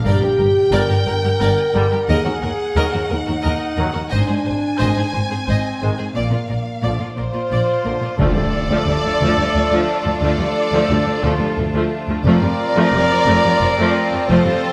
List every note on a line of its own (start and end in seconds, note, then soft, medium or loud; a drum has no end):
0.04 0.12 G1 medium
0.04 0.12 G2 medium
0.04 0.71 G4 loud
0.04 0.20 A#4 medium
0.04 0.21 D5 medium
0.10 2.07 G5 medium
0.21 0.28 G2 medium
0.21 0.30 G4 medium
0.21 0.28 A#4 medium
0.37 0.46 G1 medium
0.37 0.46 G2 medium
0.37 0.45 A#4 medium
0.37 0.46 A#4 medium
0.72 0.79 G1 loud
0.72 0.80 G2 medium
0.72 0.86 D3 medium
0.72 0.85 G3 medium
0.72 0.88 A#4 medium
0.72 1.05 A#4 loud
0.72 0.88 D5 medium
0.89 0.96 G2 medium
0.89 0.96 G4 medium
0.89 0.97 A#4 medium
1.06 1.13 G1 medium
1.06 1.14 G2 medium
1.06 2.07 A#4 loud
1.06 1.14 A#4 medium
1.24 1.31 G2 medium
1.24 1.31 G4 medium
1.24 1.31 A#4 medium
1.40 1.48 G1 loud
1.40 1.47 G2 medium
1.40 1.56 A#4 medium
1.40 1.57 D5 medium
1.74 1.82 G1 medium
1.74 1.81 G2 medium
1.74 1.86 D3 medium
1.74 1.86 G3 medium
1.74 1.81 A#4 medium
1.74 1.82 A#4 medium
1.92 1.98 G2 medium
1.92 1.99 G4 medium
1.92 1.98 A#4 medium
2.08 2.15 D#2 loud
2.08 2.16 D#2 medium
2.08 3.11 G#4 loud
2.08 2.25 A#4 medium
2.08 2.25 D#5 medium
2.08 4.08 F#5 medium
2.25 2.32 D#2 medium
2.25 2.32 F#4 medium
2.25 2.32 A#4 medium
2.42 2.49 D#2 medium
2.42 2.49 A#4 medium
2.42 2.50 A#4 medium
2.75 2.82 D#2 medium
2.75 2.84 D#2 medium
2.75 2.88 D#3 medium
2.75 2.88 F#3 medium
2.75 2.92 A#4 medium
2.75 2.93 D#5 medium
2.92 3.01 D#2 medium
2.92 2.99 F#4 medium
2.92 3.00 A#4 medium
3.10 3.17 D#2 medium
3.10 3.18 D#2 medium
3.10 4.11 D#4 loud
3.10 3.17 A#4 medium
3.26 3.34 D#2 medium
3.26 3.33 F#4 medium
3.26 3.34 A#4 medium
3.42 3.51 D#2 medium
3.42 3.52 D#2 medium
3.42 3.60 A#4 medium
3.42 3.59 D#5 medium
3.77 3.84 D#2 medium
3.77 3.85 D#2 medium
3.77 3.90 D#3 medium
3.77 3.90 F#3 medium
3.77 3.84 A#4 medium
3.92 4.02 D#2 medium
3.92 4.00 F#4 medium
3.92 4.01 A#4 medium
4.10 4.20 G#1 medium
4.10 4.18 G#2 medium
4.10 5.13 D4 loud
4.10 4.26 C5 medium
4.10 4.27 D#5 medium
4.14 6.17 G#5 medium
4.27 4.35 G#2 medium
4.27 4.35 G#4 soft
4.27 4.35 C5 medium
4.44 4.55 G#1 medium
4.44 4.52 G#2 medium
4.44 4.52 C5 medium
4.44 4.53 C5 medium
4.77 4.87 G#1 medium
4.77 4.87 G#2 medium
4.77 4.92 G#3 medium
4.77 4.94 C5 medium
4.77 4.96 D#5 medium
4.81 4.93 D#3 medium
4.96 5.04 G#2 medium
4.96 5.05 G#4 medium
4.96 5.03 C5 medium
5.13 5.21 G#1 medium
5.13 5.20 G#2 medium
5.13 6.14 C4 medium
5.13 5.20 C5 medium
5.13 5.22 C5 medium
5.30 5.37 G#2 medium
5.30 5.38 G#4 medium
5.30 5.38 C5 medium
5.47 5.55 G#1 medium
5.47 5.54 G#2 medium
5.47 5.63 C5 medium
5.47 5.64 D#5 medium
5.81 5.90 G#1 medium
5.81 5.88 G#2 medium
5.81 5.94 D#3 medium
5.81 5.94 G#3 medium
5.81 5.88 C5 medium
5.81 5.89 C5 medium
5.98 6.05 G#2 medium
5.98 6.05 G#4 medium
5.98 6.05 C5 medium
6.14 6.24 A#1 medium
6.14 6.21 A#2 medium
6.14 6.31 D5 medium
6.14 7.15 F5 medium
6.18 6.99 A#3 medium
6.31 6.38 A#2 soft
6.31 6.39 F4 soft
6.31 6.39 D5 soft
6.49 6.58 A#1 soft
6.49 6.56 A#2 soft
6.49 6.56 A#4 medium
6.49 6.56 D5 soft
6.82 6.92 A#1 medium
6.82 6.89 A#2 medium
6.82 6.96 D3 medium
6.82 6.96 F3 medium
6.82 6.99 D5 medium
6.99 7.06 A#2 soft
6.99 7.07 F4 medium
6.99 7.07 D5 medium
7.16 7.26 A#1 soft
7.16 7.23 A#2 medium
7.16 8.15 F4 medium
7.16 7.24 A#4 medium
7.16 8.14 C5 medium
7.16 8.15 C5 loud
7.16 7.24 D5 soft
7.33 7.40 A#2 soft
7.33 7.40 F4 medium
7.33 7.41 D5 medium
7.50 7.59 A#1 medium
7.50 7.57 A#2 medium
7.50 7.67 D5 medium
7.84 7.92 A#1 soft
7.84 7.91 A#2 soft
7.84 7.98 D3 medium
7.84 7.97 F3 medium
7.84 7.92 A#4 soft
7.84 7.92 D5 medium
8.01 8.08 A#2 soft
8.01 8.09 F4 medium
8.01 8.10 D5 soft
8.18 8.25 D2 medium
8.18 8.26 D2 medium
8.18 9.17 D3 medium
8.18 12.22 F3 medium
8.18 8.35 F3 medium
8.18 12.22 A3 medium
8.18 8.35 A3 medium
8.18 12.22 D4 medium
8.18 12.22 F4 medium
8.18 10.18 A4 loud
8.18 10.20 D5 loud
8.18 10.21 D5 loud
8.18 impact medium
8.35 8.42 D2 medium
8.35 8.44 F3 medium
8.35 8.43 G3 medium
8.69 8.76 D2 medium
8.69 8.87 F3 medium
8.69 8.87 A3 medium
8.86 8.93 D2 medium
8.86 8.94 D2 medium
8.86 8.94 F3 medium
8.86 8.94 G3 medium
9.04 9.11 D2 medium
9.04 9.12 F3 medium
9.04 9.11 A3 medium
9.20 9.27 D2 medium
9.20 9.28 D2 medium
9.20 9.37 F3 medium
9.20 9.37 A3 medium
9.37 9.44 D2 medium
9.37 9.46 F3 medium
9.37 9.46 G3 medium
9.53 9.60 D2 medium
9.53 9.61 D2 medium
9.53 9.62 F3 medium
9.53 9.62 A3 medium
9.71 9.78 D2 medium
9.71 9.87 F3 loud
9.71 9.87 A3 medium
10.05 10.12 D2 medium
10.05 10.13 F3 medium
10.05 10.13 A3 medium
10.21 10.28 D2 loud
10.21 10.29 D2 medium
10.21 10.37 F3 medium
10.21 10.38 A3 medium
10.21 11.22 A4 medium
10.21 11.22 D5 loud
10.38 10.45 D2 medium
10.38 10.46 F3 medium
10.38 10.46 G3 medium
10.72 10.79 D2 medium
10.72 10.89 F3 medium
10.72 10.90 A3 medium
10.89 10.96 D2 medium
10.89 10.97 D2 medium
10.89 10.97 F3 medium
10.89 10.97 G3 medium
11.06 11.13 D2 medium
11.06 11.14 F3 medium
11.06 11.14 A3 medium
11.22 11.30 D2 loud
11.22 11.40 F3 medium
11.22 11.40 A3 medium
11.22 11.58 F4 medium
11.22 11.58 A4 medium
11.39 11.46 D2 medium
11.39 11.49 F3 medium
11.39 11.49 G3 medium
11.57 11.64 D2 medium
11.57 11.65 D2 medium
11.57 11.66 F3 medium
11.57 11.65 A3 medium
11.73 11.80 D2 medium
11.73 11.91 F3 medium
11.73 11.91 A3 loud
12.08 12.15 D2 medium
12.08 12.16 F3 medium
12.08 12.16 A3 medium
12.22 12.31 F1 medium
12.22 12.31 F2 loud
12.22 14.73 F3 medium
12.22 14.73 C4 medium
12.22 14.73 F4 medium
12.22 14.25 A#4 loud
12.22 14.23 D5 loud
12.22 14.25 D5 loud
12.26 12.42 F3 medium
12.26 12.42 A3 loud
12.26 14.73 C4 medium
12.42 12.49 F2 medium
12.42 12.50 F3 medium
12.42 12.50 G3 medium
12.75 12.82 F2 loud
12.75 12.93 F3 medium
12.75 12.93 A3 loud
12.93 13.00 F1 medium
12.93 13.00 F2 medium
12.93 13.01 F3 medium
12.93 13.01 G3 medium
13.10 13.17 F2 medium
13.10 13.18 F3 medium
13.10 13.18 A3 medium
13.27 13.34 F1 medium
13.27 13.34 F2 loud
13.27 13.43 F3 medium
13.27 13.43 A3 loud
13.44 13.51 F2 medium
13.44 13.52 F3 medium
13.44 13.51 G3 medium
13.60 13.67 F1 medium
13.60 13.68 F2 medium
13.60 13.69 F3 medium
13.60 13.69 A3 medium
13.78 13.85 F2 loud
13.78 13.95 F3 loud
13.78 13.94 A3 loud
14.11 14.18 F2 medium
14.11 14.19 F3 medium
14.11 14.20 A3 medium
14.28 14.36 F1 medium
14.28 14.35 F2 loud
14.28 14.44 F3 loud
14.28 14.45 A3 loud
14.28 14.73 A4 loud
14.28 14.73 C5 loud
14.28 14.73 C5 medium
14.45 14.52 F2 medium
14.45 14.52 F3 medium
14.45 14.52 G3 medium